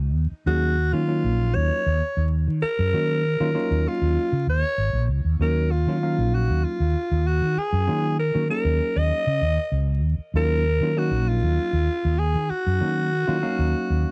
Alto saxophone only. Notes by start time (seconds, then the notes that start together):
0.47 F#4
0.94 F4
1.55 C#5
2.62 A#4
3.88 F4
4.49 C#5
5.42 A#4
5.71 F4
6.35 F#4
6.64 F4
7.27 F#4
7.58 G#4
8.20 A#4
8.50 A#4
8.98 D#5
10.37 A#4
10.98 F#4
11.29 F4
12.19 G#4
12.50 F#4